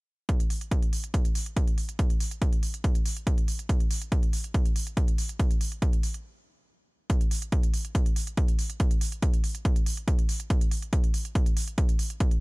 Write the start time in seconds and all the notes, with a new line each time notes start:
0.29 kick, closed hi-hat
0.40 closed hi-hat
0.50 open hi-hat
0.61 closed hi-hat
0.71 kick, closed hi-hat
0.83 closed hi-hat
0.93 open hi-hat
1.04 closed hi-hat
1.14 kick, closed hi-hat
1.25 closed hi-hat
1.35 open hi-hat
1.46 closed hi-hat
1.57 kick, closed hi-hat
1.67 closed hi-hat
1.78 open hi-hat
1.89 closed hi-hat
1.99 kick, closed hi-hat
2.10 closed hi-hat
2.20 open hi-hat
2.31 closed hi-hat
2.42 kick, closed hi-hat
2.53 closed hi-hat
2.63 open hi-hat
2.74 closed hi-hat
2.84 kick, closed hi-hat
2.95 closed hi-hat
3.06 open hi-hat
3.17 closed hi-hat
3.27 kick, closed hi-hat
3.38 closed hi-hat
3.48 open hi-hat
3.59 closed hi-hat
3.69 kick, closed hi-hat
3.80 closed hi-hat
3.91 open hi-hat
4.02 closed hi-hat
4.12 kick, closed hi-hat
4.23 closed hi-hat
4.33 open hi-hat
4.44 closed hi-hat
4.54 kick, closed hi-hat
4.65 closed hi-hat
4.76 open hi-hat
4.87 closed hi-hat
4.97 kick, closed hi-hat
5.08 closed hi-hat
5.18 open hi-hat
5.29 closed hi-hat
5.40 kick, closed hi-hat
5.51 closed hi-hat
5.61 open hi-hat
5.72 closed hi-hat
5.82 kick, closed hi-hat
5.93 closed hi-hat
6.03 open hi-hat
6.14 closed hi-hat
7.10 kick, closed hi-hat
7.21 closed hi-hat
7.31 open hi-hat
7.42 closed hi-hat
7.52 kick, closed hi-hat
7.63 closed hi-hat
7.74 open hi-hat
7.85 closed hi-hat
7.95 kick, closed hi-hat
8.06 closed hi-hat
8.16 open hi-hat
8.27 closed hi-hat
8.37 kick, closed hi-hat
8.48 closed hi-hat
8.59 open hi-hat
8.70 closed hi-hat
8.80 kick, closed hi-hat
8.91 closed hi-hat
9.01 open hi-hat
9.12 closed hi-hat
9.22 kick, closed hi-hat
9.33 closed hi-hat
9.44 open hi-hat
9.55 closed hi-hat
9.65 kick, closed hi-hat
9.76 closed hi-hat
9.86 open hi-hat
9.97 closed hi-hat
10.08 kick, closed hi-hat
10.19 closed hi-hat
10.29 open hi-hat
10.40 closed hi-hat
10.50 kick, closed hi-hat
10.61 closed hi-hat
10.71 open hi-hat
10.82 closed hi-hat
10.93 kick, closed hi-hat
11.04 closed hi-hat
11.14 open hi-hat
11.25 closed hi-hat
11.35 kick, closed hi-hat
11.46 closed hi-hat
11.57 open hi-hat
11.68 closed hi-hat
11.78 kick, closed hi-hat
11.89 closed hi-hat
11.99 open hi-hat
12.10 closed hi-hat
12.20 kick, closed hi-hat
12.31 closed hi-hat